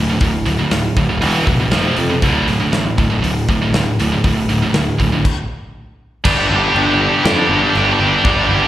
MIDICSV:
0, 0, Header, 1, 6, 480
1, 0, Start_track
1, 0, Key_signature, -1, "minor"
1, 0, Tempo, 501672
1, 206, Time_signature, 4, 2, 24, 8
1, 8302, End_track
2, 0, Start_track
2, 0, Title_t, "Distorted electric guitar"
2, 0, Program_c, 0, 30
2, 5973, Note_on_c, 0, 62, 84
2, 5986, Note_on_c, 0, 67, 91
2, 6044, Note_off_c, 0, 62, 0
2, 6048, Note_on_c, 0, 62, 61
2, 6059, Note_off_c, 0, 67, 0
2, 6063, Note_on_c, 0, 67, 68
2, 6116, Note_off_c, 0, 62, 0
2, 6119, Note_on_c, 0, 62, 73
2, 6128, Note_off_c, 0, 67, 0
2, 6132, Note_on_c, 0, 67, 76
2, 6188, Note_off_c, 0, 62, 0
2, 6191, Note_on_c, 0, 62, 63
2, 6195, Note_off_c, 0, 67, 0
2, 6199, Note_on_c, 0, 67, 71
2, 6262, Note_off_c, 0, 62, 0
2, 6266, Note_on_c, 0, 62, 75
2, 6272, Note_off_c, 0, 67, 0
2, 6278, Note_on_c, 0, 67, 81
2, 6336, Note_off_c, 0, 62, 0
2, 6340, Note_on_c, 0, 62, 63
2, 6349, Note_off_c, 0, 67, 0
2, 6353, Note_on_c, 0, 67, 69
2, 6413, Note_off_c, 0, 62, 0
2, 6418, Note_on_c, 0, 62, 77
2, 6426, Note_off_c, 0, 67, 0
2, 6429, Note_on_c, 0, 67, 83
2, 6485, Note_off_c, 0, 62, 0
2, 6489, Note_on_c, 0, 62, 67
2, 6491, Note_off_c, 0, 67, 0
2, 6494, Note_on_c, 0, 67, 69
2, 6557, Note_off_c, 0, 62, 0
2, 6561, Note_on_c, 0, 62, 72
2, 6562, Note_off_c, 0, 67, 0
2, 6566, Note_on_c, 0, 67, 87
2, 6618, Note_off_c, 0, 62, 0
2, 6622, Note_on_c, 0, 62, 66
2, 6638, Note_off_c, 0, 67, 0
2, 6641, Note_on_c, 0, 67, 77
2, 6695, Note_off_c, 0, 62, 0
2, 6703, Note_on_c, 0, 62, 80
2, 6704, Note_off_c, 0, 67, 0
2, 6708, Note_on_c, 0, 67, 84
2, 6777, Note_off_c, 0, 62, 0
2, 6781, Note_off_c, 0, 67, 0
2, 6782, Note_on_c, 0, 62, 72
2, 6791, Note_on_c, 0, 67, 74
2, 6833, Note_off_c, 0, 62, 0
2, 6837, Note_on_c, 0, 62, 78
2, 6864, Note_off_c, 0, 67, 0
2, 6867, Note_on_c, 0, 67, 90
2, 6910, Note_off_c, 0, 62, 0
2, 6923, Note_on_c, 0, 62, 68
2, 6924, Note_off_c, 0, 67, 0
2, 6928, Note_on_c, 0, 67, 75
2, 6985, Note_off_c, 0, 62, 0
2, 6989, Note_on_c, 0, 62, 76
2, 7000, Note_off_c, 0, 67, 0
2, 7004, Note_on_c, 0, 67, 83
2, 7062, Note_off_c, 0, 62, 0
2, 7071, Note_off_c, 0, 67, 0
2, 7072, Note_on_c, 0, 62, 65
2, 7075, Note_on_c, 0, 67, 70
2, 7144, Note_off_c, 0, 67, 0
2, 7145, Note_off_c, 0, 62, 0
2, 7147, Note_on_c, 0, 67, 80
2, 7150, Note_on_c, 0, 62, 77
2, 7211, Note_off_c, 0, 62, 0
2, 7215, Note_on_c, 0, 62, 66
2, 7216, Note_off_c, 0, 67, 0
2, 7219, Note_on_c, 0, 67, 67
2, 7285, Note_off_c, 0, 62, 0
2, 7288, Note_off_c, 0, 67, 0
2, 7289, Note_on_c, 0, 62, 75
2, 7292, Note_on_c, 0, 67, 78
2, 7351, Note_off_c, 0, 62, 0
2, 7354, Note_on_c, 0, 62, 68
2, 7365, Note_off_c, 0, 67, 0
2, 7373, Note_on_c, 0, 67, 69
2, 7428, Note_off_c, 0, 62, 0
2, 7443, Note_on_c, 0, 62, 76
2, 7444, Note_off_c, 0, 67, 0
2, 7448, Note_on_c, 0, 67, 76
2, 7504, Note_off_c, 0, 62, 0
2, 7508, Note_on_c, 0, 62, 63
2, 7513, Note_off_c, 0, 67, 0
2, 7517, Note_on_c, 0, 67, 71
2, 7573, Note_off_c, 0, 62, 0
2, 7576, Note_on_c, 0, 62, 71
2, 7584, Note_off_c, 0, 67, 0
2, 7588, Note_on_c, 0, 67, 80
2, 7650, Note_off_c, 0, 62, 0
2, 7655, Note_on_c, 0, 62, 64
2, 7656, Note_off_c, 0, 67, 0
2, 7660, Note_on_c, 0, 67, 70
2, 7724, Note_off_c, 0, 67, 0
2, 7728, Note_off_c, 0, 62, 0
2, 7728, Note_on_c, 0, 67, 69
2, 7733, Note_on_c, 0, 62, 72
2, 7796, Note_off_c, 0, 62, 0
2, 7800, Note_off_c, 0, 67, 0
2, 7800, Note_on_c, 0, 62, 59
2, 7804, Note_on_c, 0, 67, 61
2, 7873, Note_off_c, 0, 62, 0
2, 7877, Note_off_c, 0, 67, 0
2, 7887, Note_on_c, 0, 62, 90
2, 7892, Note_on_c, 0, 67, 96
2, 7951, Note_off_c, 0, 62, 0
2, 7955, Note_on_c, 0, 62, 62
2, 7963, Note_off_c, 0, 67, 0
2, 7967, Note_on_c, 0, 67, 68
2, 8028, Note_off_c, 0, 62, 0
2, 8035, Note_on_c, 0, 62, 73
2, 8037, Note_off_c, 0, 67, 0
2, 8041, Note_on_c, 0, 67, 83
2, 8104, Note_off_c, 0, 62, 0
2, 8107, Note_off_c, 0, 67, 0
2, 8108, Note_on_c, 0, 62, 61
2, 8111, Note_on_c, 0, 67, 76
2, 8176, Note_off_c, 0, 67, 0
2, 8179, Note_off_c, 0, 62, 0
2, 8179, Note_on_c, 0, 67, 90
2, 8183, Note_on_c, 0, 62, 77
2, 8250, Note_off_c, 0, 62, 0
2, 8252, Note_off_c, 0, 67, 0
2, 8254, Note_on_c, 0, 62, 65
2, 8266, Note_on_c, 0, 67, 76
2, 8302, Note_off_c, 0, 62, 0
2, 8302, Note_off_c, 0, 67, 0
2, 8302, End_track
3, 0, Start_track
3, 0, Title_t, "Distorted electric guitar"
3, 0, Program_c, 1, 30
3, 5989, Note_on_c, 1, 55, 102
3, 6226, Note_off_c, 1, 55, 0
3, 6230, Note_on_c, 1, 55, 98
3, 6463, Note_off_c, 1, 55, 0
3, 6466, Note_on_c, 1, 55, 107
3, 6710, Note_off_c, 1, 55, 0
3, 6714, Note_on_c, 1, 55, 106
3, 6943, Note_off_c, 1, 55, 0
3, 6946, Note_on_c, 1, 55, 99
3, 7181, Note_off_c, 1, 55, 0
3, 7185, Note_on_c, 1, 55, 91
3, 7415, Note_off_c, 1, 55, 0
3, 7419, Note_on_c, 1, 55, 102
3, 7658, Note_off_c, 1, 55, 0
3, 7662, Note_on_c, 1, 55, 102
3, 7899, Note_off_c, 1, 55, 0
3, 7903, Note_on_c, 1, 55, 104
3, 8137, Note_off_c, 1, 55, 0
3, 8141, Note_on_c, 1, 55, 110
3, 8302, Note_off_c, 1, 55, 0
3, 8302, End_track
4, 0, Start_track
4, 0, Title_t, "Distorted electric guitar"
4, 0, Program_c, 2, 30
4, 73, Note_on_c, 2, 45, 74
4, 77, Note_on_c, 2, 38, 63
4, 191, Note_off_c, 2, 38, 0
4, 192, Note_off_c, 2, 45, 0
4, 203, Note_on_c, 2, 38, 75
4, 204, Note_on_c, 2, 45, 90
4, 420, Note_off_c, 2, 38, 0
4, 421, Note_off_c, 2, 45, 0
4, 435, Note_on_c, 2, 45, 65
4, 436, Note_on_c, 2, 38, 61
4, 543, Note_off_c, 2, 45, 0
4, 545, Note_off_c, 2, 38, 0
4, 554, Note_on_c, 2, 45, 85
4, 557, Note_on_c, 2, 38, 70
4, 674, Note_off_c, 2, 38, 0
4, 675, Note_off_c, 2, 45, 0
4, 685, Note_on_c, 2, 38, 71
4, 687, Note_on_c, 2, 45, 82
4, 902, Note_off_c, 2, 38, 0
4, 903, Note_off_c, 2, 45, 0
4, 928, Note_on_c, 2, 45, 75
4, 930, Note_on_c, 2, 38, 61
4, 1030, Note_off_c, 2, 45, 0
4, 1034, Note_off_c, 2, 38, 0
4, 1042, Note_on_c, 2, 45, 65
4, 1045, Note_on_c, 2, 38, 55
4, 1160, Note_off_c, 2, 38, 0
4, 1164, Note_off_c, 2, 45, 0
4, 1164, Note_on_c, 2, 40, 68
4, 1168, Note_on_c, 2, 47, 77
4, 1172, Note_on_c, 2, 52, 84
4, 1392, Note_off_c, 2, 40, 0
4, 1394, Note_off_c, 2, 47, 0
4, 1396, Note_off_c, 2, 52, 0
4, 1412, Note_on_c, 2, 47, 74
4, 1415, Note_on_c, 2, 40, 63
4, 1525, Note_off_c, 2, 47, 0
4, 1528, Note_off_c, 2, 40, 0
4, 1536, Note_on_c, 2, 47, 81
4, 1540, Note_on_c, 2, 40, 61
4, 1649, Note_off_c, 2, 40, 0
4, 1652, Note_off_c, 2, 47, 0
4, 1653, Note_on_c, 2, 41, 89
4, 1660, Note_on_c, 2, 48, 99
4, 1663, Note_on_c, 2, 53, 118
4, 1876, Note_off_c, 2, 48, 0
4, 1877, Note_off_c, 2, 41, 0
4, 1882, Note_off_c, 2, 53, 0
4, 1887, Note_on_c, 2, 41, 64
4, 1887, Note_on_c, 2, 48, 85
4, 1995, Note_off_c, 2, 48, 0
4, 2000, Note_off_c, 2, 41, 0
4, 2007, Note_on_c, 2, 48, 77
4, 2011, Note_on_c, 2, 41, 72
4, 2125, Note_off_c, 2, 41, 0
4, 2128, Note_off_c, 2, 48, 0
4, 2129, Note_on_c, 2, 38, 93
4, 2136, Note_on_c, 2, 45, 104
4, 2142, Note_on_c, 2, 50, 98
4, 2356, Note_off_c, 2, 38, 0
4, 2359, Note_off_c, 2, 45, 0
4, 2362, Note_off_c, 2, 50, 0
4, 2374, Note_on_c, 2, 45, 73
4, 2379, Note_on_c, 2, 38, 65
4, 2489, Note_off_c, 2, 45, 0
4, 2490, Note_off_c, 2, 38, 0
4, 2500, Note_on_c, 2, 45, 93
4, 2502, Note_on_c, 2, 38, 76
4, 2607, Note_off_c, 2, 38, 0
4, 2609, Note_off_c, 2, 45, 0
4, 2619, Note_on_c, 2, 38, 83
4, 2621, Note_on_c, 2, 45, 79
4, 2832, Note_off_c, 2, 38, 0
4, 2833, Note_off_c, 2, 45, 0
4, 2855, Note_on_c, 2, 45, 80
4, 2861, Note_on_c, 2, 38, 59
4, 2974, Note_off_c, 2, 38, 0
4, 2974, Note_off_c, 2, 45, 0
4, 2985, Note_on_c, 2, 38, 56
4, 2985, Note_on_c, 2, 45, 68
4, 3091, Note_off_c, 2, 38, 0
4, 3092, Note_off_c, 2, 45, 0
4, 3102, Note_on_c, 2, 38, 69
4, 3104, Note_on_c, 2, 45, 73
4, 3314, Note_off_c, 2, 38, 0
4, 3315, Note_off_c, 2, 45, 0
4, 3340, Note_on_c, 2, 45, 82
4, 3347, Note_on_c, 2, 38, 71
4, 3457, Note_off_c, 2, 45, 0
4, 3460, Note_off_c, 2, 38, 0
4, 3467, Note_on_c, 2, 45, 81
4, 3473, Note_on_c, 2, 38, 68
4, 3572, Note_off_c, 2, 38, 0
4, 3576, Note_off_c, 2, 45, 0
4, 3583, Note_on_c, 2, 38, 76
4, 3587, Note_on_c, 2, 45, 92
4, 3795, Note_off_c, 2, 38, 0
4, 3797, Note_off_c, 2, 45, 0
4, 3819, Note_on_c, 2, 45, 82
4, 3822, Note_on_c, 2, 38, 70
4, 3937, Note_off_c, 2, 45, 0
4, 3939, Note_off_c, 2, 38, 0
4, 3947, Note_on_c, 2, 45, 81
4, 3949, Note_on_c, 2, 38, 59
4, 4055, Note_off_c, 2, 38, 0
4, 4061, Note_off_c, 2, 45, 0
4, 4066, Note_on_c, 2, 38, 72
4, 4073, Note_on_c, 2, 45, 81
4, 4277, Note_off_c, 2, 38, 0
4, 4281, Note_off_c, 2, 45, 0
4, 4311, Note_on_c, 2, 38, 62
4, 4311, Note_on_c, 2, 45, 68
4, 4419, Note_off_c, 2, 45, 0
4, 4421, Note_off_c, 2, 38, 0
4, 4431, Note_on_c, 2, 45, 83
4, 4432, Note_on_c, 2, 38, 69
4, 4539, Note_off_c, 2, 38, 0
4, 4543, Note_off_c, 2, 45, 0
4, 4551, Note_on_c, 2, 38, 72
4, 4555, Note_on_c, 2, 45, 77
4, 4760, Note_off_c, 2, 38, 0
4, 4762, Note_off_c, 2, 45, 0
4, 4787, Note_on_c, 2, 45, 69
4, 4792, Note_on_c, 2, 38, 60
4, 4902, Note_off_c, 2, 45, 0
4, 4905, Note_off_c, 2, 38, 0
4, 4913, Note_on_c, 2, 45, 67
4, 4918, Note_on_c, 2, 38, 58
4, 5025, Note_off_c, 2, 45, 0
4, 5027, Note_off_c, 2, 38, 0
4, 5985, Note_on_c, 2, 43, 77
4, 5989, Note_on_c, 2, 50, 108
4, 6054, Note_off_c, 2, 50, 0
4, 6058, Note_off_c, 2, 43, 0
4, 6058, Note_on_c, 2, 50, 77
4, 6062, Note_on_c, 2, 43, 54
4, 6131, Note_off_c, 2, 50, 0
4, 6134, Note_off_c, 2, 43, 0
4, 6140, Note_on_c, 2, 50, 86
4, 6141, Note_on_c, 2, 43, 65
4, 6204, Note_off_c, 2, 43, 0
4, 6204, Note_off_c, 2, 50, 0
4, 6207, Note_on_c, 2, 50, 75
4, 6208, Note_on_c, 2, 43, 60
4, 6257, Note_off_c, 2, 43, 0
4, 6261, Note_on_c, 2, 43, 72
4, 6273, Note_off_c, 2, 50, 0
4, 6277, Note_on_c, 2, 50, 96
4, 6334, Note_off_c, 2, 43, 0
4, 6349, Note_off_c, 2, 50, 0
4, 6353, Note_on_c, 2, 50, 84
4, 6366, Note_on_c, 2, 43, 58
4, 6409, Note_off_c, 2, 43, 0
4, 6413, Note_on_c, 2, 43, 73
4, 6423, Note_off_c, 2, 50, 0
4, 6427, Note_on_c, 2, 50, 96
4, 6485, Note_off_c, 2, 43, 0
4, 6489, Note_on_c, 2, 43, 65
4, 6500, Note_off_c, 2, 50, 0
4, 6508, Note_on_c, 2, 50, 81
4, 6562, Note_off_c, 2, 43, 0
4, 6563, Note_off_c, 2, 50, 0
4, 6566, Note_on_c, 2, 50, 100
4, 6576, Note_on_c, 2, 43, 78
4, 6638, Note_off_c, 2, 43, 0
4, 6639, Note_off_c, 2, 50, 0
4, 6642, Note_on_c, 2, 43, 68
4, 6644, Note_on_c, 2, 50, 82
4, 6698, Note_off_c, 2, 43, 0
4, 6702, Note_on_c, 2, 43, 76
4, 6707, Note_off_c, 2, 50, 0
4, 6711, Note_on_c, 2, 50, 101
4, 6774, Note_off_c, 2, 43, 0
4, 6782, Note_on_c, 2, 43, 69
4, 6784, Note_off_c, 2, 50, 0
4, 6788, Note_on_c, 2, 50, 90
4, 6853, Note_off_c, 2, 43, 0
4, 6857, Note_on_c, 2, 43, 71
4, 6860, Note_off_c, 2, 50, 0
4, 6868, Note_on_c, 2, 50, 95
4, 6922, Note_off_c, 2, 43, 0
4, 6924, Note_off_c, 2, 50, 0
4, 6926, Note_on_c, 2, 43, 65
4, 6928, Note_on_c, 2, 50, 81
4, 6998, Note_off_c, 2, 43, 0
4, 7001, Note_off_c, 2, 50, 0
4, 7002, Note_on_c, 2, 43, 73
4, 7005, Note_on_c, 2, 50, 96
4, 7070, Note_off_c, 2, 43, 0
4, 7073, Note_on_c, 2, 43, 64
4, 7076, Note_off_c, 2, 50, 0
4, 7079, Note_on_c, 2, 50, 84
4, 7146, Note_off_c, 2, 43, 0
4, 7152, Note_off_c, 2, 50, 0
4, 7153, Note_on_c, 2, 43, 70
4, 7156, Note_on_c, 2, 50, 93
4, 7203, Note_off_c, 2, 43, 0
4, 7206, Note_on_c, 2, 43, 62
4, 7222, Note_off_c, 2, 50, 0
4, 7226, Note_on_c, 2, 50, 82
4, 7279, Note_off_c, 2, 43, 0
4, 7296, Note_off_c, 2, 50, 0
4, 7298, Note_on_c, 2, 43, 69
4, 7300, Note_on_c, 2, 50, 96
4, 7362, Note_off_c, 2, 43, 0
4, 7365, Note_on_c, 2, 43, 62
4, 7373, Note_off_c, 2, 50, 0
4, 7379, Note_on_c, 2, 50, 76
4, 7437, Note_off_c, 2, 43, 0
4, 7439, Note_off_c, 2, 50, 0
4, 7441, Note_on_c, 2, 43, 71
4, 7443, Note_on_c, 2, 50, 87
4, 7507, Note_off_c, 2, 43, 0
4, 7511, Note_on_c, 2, 43, 59
4, 7515, Note_off_c, 2, 50, 0
4, 7520, Note_on_c, 2, 50, 77
4, 7583, Note_off_c, 2, 43, 0
4, 7583, Note_off_c, 2, 50, 0
4, 7587, Note_on_c, 2, 43, 71
4, 7587, Note_on_c, 2, 50, 91
4, 7656, Note_off_c, 2, 50, 0
4, 7658, Note_off_c, 2, 43, 0
4, 7660, Note_on_c, 2, 50, 80
4, 7662, Note_on_c, 2, 43, 58
4, 7726, Note_off_c, 2, 50, 0
4, 7730, Note_off_c, 2, 43, 0
4, 7730, Note_on_c, 2, 50, 81
4, 7734, Note_on_c, 2, 43, 65
4, 7796, Note_off_c, 2, 43, 0
4, 7800, Note_on_c, 2, 43, 54
4, 7803, Note_off_c, 2, 50, 0
4, 7811, Note_on_c, 2, 50, 68
4, 7873, Note_off_c, 2, 43, 0
4, 7884, Note_off_c, 2, 50, 0
4, 7888, Note_on_c, 2, 43, 91
4, 7891, Note_on_c, 2, 50, 89
4, 7956, Note_off_c, 2, 43, 0
4, 7960, Note_on_c, 2, 43, 61
4, 7964, Note_off_c, 2, 50, 0
4, 7969, Note_on_c, 2, 50, 72
4, 8033, Note_off_c, 2, 43, 0
4, 8034, Note_off_c, 2, 50, 0
4, 8038, Note_on_c, 2, 50, 81
4, 8044, Note_on_c, 2, 43, 81
4, 8096, Note_off_c, 2, 43, 0
4, 8100, Note_on_c, 2, 43, 66
4, 8101, Note_off_c, 2, 50, 0
4, 8105, Note_on_c, 2, 50, 67
4, 8173, Note_off_c, 2, 43, 0
4, 8178, Note_off_c, 2, 50, 0
4, 8182, Note_on_c, 2, 43, 80
4, 8182, Note_on_c, 2, 50, 85
4, 8253, Note_off_c, 2, 43, 0
4, 8255, Note_off_c, 2, 50, 0
4, 8257, Note_on_c, 2, 43, 71
4, 8260, Note_on_c, 2, 50, 69
4, 8302, Note_off_c, 2, 43, 0
4, 8302, Note_off_c, 2, 50, 0
4, 8302, End_track
5, 0, Start_track
5, 0, Title_t, "Picked electric bass"
5, 0, Program_c, 3, 34
5, 0, Note_on_c, 3, 26, 81
5, 125, Note_off_c, 3, 26, 0
5, 204, Note_on_c, 3, 26, 101
5, 357, Note_off_c, 3, 26, 0
5, 448, Note_on_c, 3, 26, 84
5, 600, Note_off_c, 3, 26, 0
5, 692, Note_on_c, 3, 26, 86
5, 843, Note_off_c, 3, 26, 0
5, 928, Note_on_c, 3, 26, 84
5, 1173, Note_off_c, 3, 26, 0
5, 1173, Note_on_c, 3, 28, 86
5, 1324, Note_off_c, 3, 28, 0
5, 1410, Note_on_c, 3, 26, 93
5, 1562, Note_off_c, 3, 26, 0
5, 1651, Note_on_c, 3, 29, 90
5, 1803, Note_off_c, 3, 29, 0
5, 1894, Note_on_c, 3, 41, 92
5, 2045, Note_off_c, 3, 41, 0
5, 2127, Note_on_c, 3, 26, 95
5, 2280, Note_off_c, 3, 26, 0
5, 2374, Note_on_c, 3, 26, 81
5, 2525, Note_off_c, 3, 26, 0
5, 2611, Note_on_c, 3, 33, 99
5, 2764, Note_off_c, 3, 33, 0
5, 2859, Note_on_c, 3, 26, 80
5, 3009, Note_off_c, 3, 26, 0
5, 3100, Note_on_c, 3, 26, 81
5, 3250, Note_off_c, 3, 26, 0
5, 3338, Note_on_c, 3, 26, 100
5, 3489, Note_off_c, 3, 26, 0
5, 3578, Note_on_c, 3, 26, 93
5, 3730, Note_off_c, 3, 26, 0
5, 3822, Note_on_c, 3, 26, 92
5, 3972, Note_off_c, 3, 26, 0
5, 4063, Note_on_c, 3, 26, 101
5, 4213, Note_off_c, 3, 26, 0
5, 4296, Note_on_c, 3, 26, 90
5, 4449, Note_off_c, 3, 26, 0
5, 4535, Note_on_c, 3, 26, 91
5, 4688, Note_off_c, 3, 26, 0
5, 4780, Note_on_c, 3, 26, 78
5, 4931, Note_off_c, 3, 26, 0
5, 5983, Note_on_c, 3, 31, 103
5, 6137, Note_off_c, 3, 31, 0
5, 6226, Note_on_c, 3, 31, 96
5, 6379, Note_off_c, 3, 31, 0
5, 6461, Note_on_c, 3, 31, 105
5, 6771, Note_off_c, 3, 31, 0
5, 6935, Note_on_c, 3, 41, 90
5, 7091, Note_off_c, 3, 41, 0
5, 7168, Note_on_c, 3, 31, 100
5, 7326, Note_off_c, 3, 31, 0
5, 7418, Note_on_c, 3, 31, 97
5, 7572, Note_off_c, 3, 31, 0
5, 7652, Note_on_c, 3, 31, 95
5, 7807, Note_off_c, 3, 31, 0
5, 7893, Note_on_c, 3, 31, 96
5, 8047, Note_off_c, 3, 31, 0
5, 8125, Note_on_c, 3, 31, 95
5, 8282, Note_off_c, 3, 31, 0
5, 8302, End_track
6, 0, Start_track
6, 0, Title_t, "Drums"
6, 197, Note_on_c, 9, 46, 79
6, 201, Note_on_c, 9, 36, 110
6, 292, Note_off_c, 9, 46, 0
6, 296, Note_off_c, 9, 36, 0
6, 441, Note_on_c, 9, 46, 61
6, 536, Note_off_c, 9, 46, 0
6, 682, Note_on_c, 9, 46, 79
6, 684, Note_on_c, 9, 38, 105
6, 777, Note_off_c, 9, 46, 0
6, 780, Note_off_c, 9, 38, 0
6, 924, Note_on_c, 9, 46, 58
6, 925, Note_on_c, 9, 36, 93
6, 1020, Note_off_c, 9, 46, 0
6, 1021, Note_off_c, 9, 36, 0
6, 1166, Note_on_c, 9, 46, 83
6, 1261, Note_off_c, 9, 46, 0
6, 1406, Note_on_c, 9, 46, 55
6, 1407, Note_on_c, 9, 36, 88
6, 1502, Note_off_c, 9, 46, 0
6, 1503, Note_off_c, 9, 36, 0
6, 1640, Note_on_c, 9, 46, 72
6, 1643, Note_on_c, 9, 38, 105
6, 1735, Note_off_c, 9, 46, 0
6, 1738, Note_off_c, 9, 38, 0
6, 1881, Note_on_c, 9, 46, 59
6, 1976, Note_off_c, 9, 46, 0
6, 2126, Note_on_c, 9, 46, 68
6, 2127, Note_on_c, 9, 36, 103
6, 2221, Note_off_c, 9, 46, 0
6, 2223, Note_off_c, 9, 36, 0
6, 2371, Note_on_c, 9, 46, 51
6, 2467, Note_off_c, 9, 46, 0
6, 2609, Note_on_c, 9, 46, 70
6, 2612, Note_on_c, 9, 38, 100
6, 2705, Note_off_c, 9, 46, 0
6, 2708, Note_off_c, 9, 38, 0
6, 2853, Note_on_c, 9, 36, 84
6, 2854, Note_on_c, 9, 46, 50
6, 2949, Note_off_c, 9, 36, 0
6, 2950, Note_off_c, 9, 46, 0
6, 3099, Note_on_c, 9, 46, 81
6, 3195, Note_off_c, 9, 46, 0
6, 3333, Note_on_c, 9, 46, 57
6, 3336, Note_on_c, 9, 36, 91
6, 3429, Note_off_c, 9, 46, 0
6, 3431, Note_off_c, 9, 36, 0
6, 3578, Note_on_c, 9, 46, 72
6, 3581, Note_on_c, 9, 38, 109
6, 3674, Note_off_c, 9, 46, 0
6, 3676, Note_off_c, 9, 38, 0
6, 3823, Note_on_c, 9, 46, 64
6, 3919, Note_off_c, 9, 46, 0
6, 4058, Note_on_c, 9, 46, 80
6, 4059, Note_on_c, 9, 36, 107
6, 4154, Note_off_c, 9, 46, 0
6, 4155, Note_off_c, 9, 36, 0
6, 4300, Note_on_c, 9, 46, 53
6, 4396, Note_off_c, 9, 46, 0
6, 4535, Note_on_c, 9, 46, 70
6, 4538, Note_on_c, 9, 38, 108
6, 4630, Note_off_c, 9, 46, 0
6, 4633, Note_off_c, 9, 38, 0
6, 4781, Note_on_c, 9, 36, 80
6, 4784, Note_on_c, 9, 46, 56
6, 4877, Note_off_c, 9, 36, 0
6, 4879, Note_off_c, 9, 46, 0
6, 5023, Note_on_c, 9, 36, 100
6, 5026, Note_on_c, 9, 49, 108
6, 5119, Note_off_c, 9, 36, 0
6, 5122, Note_off_c, 9, 49, 0
6, 5981, Note_on_c, 9, 36, 122
6, 5981, Note_on_c, 9, 49, 127
6, 5981, Note_on_c, 9, 57, 70
6, 6077, Note_off_c, 9, 36, 0
6, 6077, Note_off_c, 9, 49, 0
6, 6077, Note_off_c, 9, 57, 0
6, 6466, Note_on_c, 9, 57, 57
6, 6562, Note_off_c, 9, 57, 0
6, 6939, Note_on_c, 9, 57, 67
6, 6942, Note_on_c, 9, 38, 126
6, 7035, Note_off_c, 9, 57, 0
6, 7038, Note_off_c, 9, 38, 0
6, 7416, Note_on_c, 9, 57, 59
6, 7512, Note_off_c, 9, 57, 0
6, 7890, Note_on_c, 9, 57, 68
6, 7893, Note_on_c, 9, 36, 118
6, 7985, Note_off_c, 9, 57, 0
6, 7989, Note_off_c, 9, 36, 0
6, 8302, End_track
0, 0, End_of_file